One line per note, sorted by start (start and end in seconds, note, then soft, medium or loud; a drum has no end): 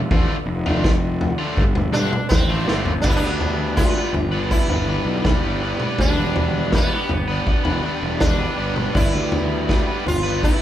0.00 3.01 F4 medium
0.00 3.01 A4 medium
0.00 3.02 B4 medium
0.00 3.01 D5 medium
0.11 0.25 A1 loud
0.11 0.35 D3 medium
0.11 0.35 A3 medium
0.11 0.35 D4 medium
0.11 0.35 F4 loud
0.11 kick loud
0.11 floor tom medium
0.46 1.31 F1 loud
0.66 0.90 D3 medium
0.66 0.90 A3 medium
0.66 0.90 D4 medium
0.66 0.90 F4 loud
0.66 floor tom medium
0.84 kick loud
0.84 snare medium
1.21 floor tom medium
1.38 1.63 D3 medium
1.38 1.63 A3 medium
1.38 1.63 D4 medium
1.38 1.62 F4 medium
1.57 1.85 G1 loud
1.57 kick loud
1.75 floor tom medium
1.75 mid tom medium
1.92 2.07 G2 medium
1.92 2.12 D3 medium
1.92 2.12 A3 medium
1.92 2.11 D4 medium
1.92 2.29 D4 loud
1.92 2.11 F4 medium
1.92 mid tom medium
2.12 muted overdriven electric guitar stroke soft
2.12 mid tom medium
2.29 2.64 A1 medium
2.29 2.82 C4 medium
2.29 muted overdriven electric guitar stroke soft
2.29 kick loud
2.29 snare medium
2.29 floor tom medium
2.50 2.66 D3 medium
2.50 2.66 A3 medium
2.50 2.67 D4 medium
2.50 2.67 F4 loud
2.66 3.00 G1 medium
2.66 2.91 D3 medium
2.66 2.91 A3 medium
2.66 2.92 D4 medium
2.66 2.92 F4 medium
2.66 snare medium
2.82 3.01 B3 medium
2.82 floor tom medium
3.02 3.18 G1 loud
3.02 3.77 G3 medium
3.02 3.22 B3 medium
3.02 3.10 D4 medium
3.02 3.24 D4 medium
3.02 10.62 G4 medium
3.02 10.62 B4 medium
3.02 10.62 D5 medium
3.02 10.62 G5 medium
3.02 kick loud
3.02 floor tom medium
3.02 crash medium
3.06 3.16 E4 medium
3.06 3.21 B4 medium
3.16 3.76 D4 medium
3.21 3.93 D2 medium
3.21 3.78 B3 medium
3.21 3.78 D4 medium
3.21 3.79 B4 medium
3.41 floor tom medium
3.77 4.13 G3 medium
3.77 3.96 B3 loud
3.77 3.97 D4 medium
3.77 4.47 F4 medium
3.77 3.95 B4 loud
3.77 kick loud
3.77 snare medium
3.95 4.14 B3 medium
3.95 4.13 D4 medium
3.95 4.14 B4 medium
4.13 4.56 G1 medium
4.13 muted overdriven electric guitar stroke soft
4.13 floor tom medium
4.32 4.71 B3 medium
4.32 4.72 D4 medium
4.32 4.69 B4 medium
4.51 5.95 E4 medium
4.51 kick loud
4.68 4.97 G1 medium
4.68 4.90 B3 medium
4.68 4.90 B4 medium
4.68 floor tom medium
4.72 4.89 D4 medium
4.89 5.24 G3 medium
4.89 5.26 B3 medium
4.89 5.25 D4 medium
4.89 5.27 B4 medium
5.05 5.34 B1 loud
5.25 5.62 G3 medium
5.25 5.44 B3 medium
5.25 5.45 D4 medium
5.25 5.43 B4 medium
5.25 kick loud
5.25 snare medium
5.25 floor tom medium
5.42 5.71 G1 medium
5.42 5.64 B3 medium
5.42 5.63 D4 medium
5.42 5.64 B4 medium
5.62 5.98 G3 medium
5.62 5.81 B3 medium
5.62 5.82 D4 medium
5.62 5.80 B4 medium
5.80 6.00 B3 medium
5.80 5.99 D4 medium
5.80 6.01 B4 medium
5.80 mid tom medium
5.98 6.13 D2 medium
5.98 6.72 G3 medium
5.98 6.18 B3 medium
5.98 6.20 D4 medium
5.98 6.74 D4 medium
5.98 6.17 B4 loud
5.98 kick medium
5.98 floor tom medium
6.15 6.87 E1 medium
6.15 6.74 B3 medium
6.15 6.75 B4 medium
6.20 6.74 D4 medium
6.36 floor tom medium
6.72 7.10 G3 medium
6.72 6.92 B3 loud
6.72 8.18 B3 medium
6.72 6.93 D4 loud
6.72 6.91 B4 loud
6.72 kick loud
6.72 snare medium
6.91 7.11 B3 medium
6.91 7.11 D4 medium
6.91 7.11 B4 medium
7.09 7.38 G1 medium
7.09 muted overdriven electric guitar stroke soft
7.09 floor tom medium
7.28 7.65 B3 medium
7.28 7.66 D4 soft
7.28 7.63 B4 medium
7.47 kick loud
7.64 7.80 E1 medium
7.64 7.84 B3 medium
7.64 7.84 D4 medium
7.64 7.85 B4 medium
7.64 floor tom medium
7.83 8.20 G3 medium
7.83 8.22 B3 medium
7.83 8.21 D4 medium
7.83 8.22 B4 medium
8.02 8.45 E1 medium
8.20 8.57 G3 medium
8.20 8.39 B3 medium
8.20 8.97 D4 medium
8.20 8.41 D4 medium
8.20 8.38 B4 loud
8.20 kick loud
8.20 snare medium
8.20 floor tom medium
8.39 8.58 B3 medium
8.39 8.58 D4 medium
8.39 8.59 B4 medium
8.57 8.86 G1 medium
8.57 8.93 G3 medium
8.57 8.76 B3 medium
8.57 8.77 D4 medium
8.57 8.75 B4 medium
8.75 8.95 B3 medium
8.75 8.94 D4 medium
8.75 8.96 B4 medium
8.75 mid tom medium
8.93 9.09 G1 loud
8.93 9.67 G3 medium
8.93 9.14 B3 loud
8.93 9.15 D4 medium
8.93 10.03 E4 loud
8.93 9.13 B4 loud
8.93 kick loud
8.93 floor tom medium
9.13 9.85 D2 medium
9.13 9.69 B3 medium
9.13 9.69 D4 medium
9.13 9.70 B4 medium
9.32 floor tom medium
9.68 10.05 G3 loud
9.68 9.88 B3 loud
9.68 9.89 D4 loud
9.68 9.86 B4 loud
9.68 kick loud
9.68 snare medium
9.87 10.06 B3 medium
9.87 10.06 D4 medium
9.87 10.06 B4 medium
10.06 10.48 G1 medium
10.06 10.41 F4 medium
10.06 muted overdriven electric guitar stroke soft
10.06 floor tom medium
10.24 10.61 B3 medium
10.24 10.62 D4 medium
10.24 10.60 B4 medium
10.43 10.62 E4 medium
10.43 kick loud